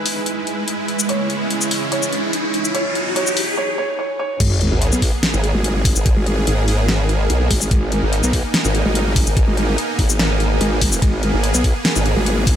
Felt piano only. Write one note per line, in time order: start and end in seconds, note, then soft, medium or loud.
0.00 0.39 B4 medium
1.09 1.84 C#5 medium
1.92 2.67 C#5 medium
2.75 3.14 C#5 loud
3.16 3.56 C#5 medium
3.57 3.76 C#5 loud
3.78 3.97 C#5 loud
3.99 4.18 C#5 loud
4.19 4.39 C#5 loud